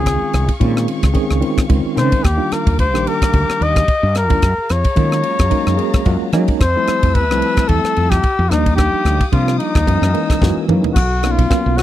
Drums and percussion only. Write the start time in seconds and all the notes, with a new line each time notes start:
0.06 kick, cross-stick, ride
0.33 cross-stick, ride
0.49 kick, ride
0.61 kick, ride
0.77 cross-stick
0.88 ride
1.03 kick, cross-stick, ride
1.15 kick, ride
1.31 cross-stick
1.42 ride
1.58 kick, cross-stick, ride
1.70 kick, ride
1.97 cross-stick, ride
2.12 kick, ride
2.24 kick, cross-stick, ride
2.52 cross-stick, ride
2.67 kick, ride
2.79 kick, ride
2.95 cross-stick
3.07 ride
3.22 kick, cross-stick, ride
3.33 kick, ride
3.50 cross-stick
3.62 ride
3.76 kick, cross-stick, ride
3.88 kick, ride
4.15 cross-stick, ride
4.30 kick, ride
4.42 kick, cross-stick, ride
4.69 cross-stick, ride
4.84 kick, ride
4.96 kick, ride
5.12 cross-stick
5.23 ride
5.39 kick, cross-stick, ride
5.51 kick, ride
5.67 cross-stick
5.79 ride
5.93 kick, cross-stick, ride
6.05 kick, ride
6.32 cross-stick, ride
6.48 kick, ride
6.60 kick, cross-stick, ride
6.87 cross-stick, ride
7.03 kick, ride
7.15 kick, ride
7.31 cross-stick
7.42 ride
7.57 kick, cross-stick, ride
7.69 kick, ride
7.85 cross-stick
7.96 ride
8.11 kick, cross-stick, ride
8.23 kick, ride
8.51 cross-stick, ride
8.66 kick, ride
8.78 kick, cross-stick, ride
9.05 cross-stick, ride
9.20 kick, ride
9.32 kick, ride
9.48 cross-stick
9.60 ride
9.75 kick, cross-stick, ride
9.87 kick, ride
10.03 cross-stick
10.14 ride
10.30 kick, cross-stick, ride
10.42 kick, snare
10.69 mid tom
10.84 floor tom
10.96 kick, cross-stick, crash
11.23 cross-stick, ride
11.39 kick, ride
11.51 kick, cross-stick, ride
11.78 cross-stick, ride